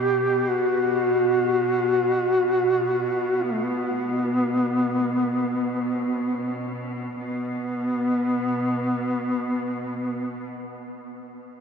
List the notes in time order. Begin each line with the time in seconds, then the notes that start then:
Already playing: B2 G4
0.49 F#4
3.43 B3
3.53 A3
3.64 B3
7.16 B2 B3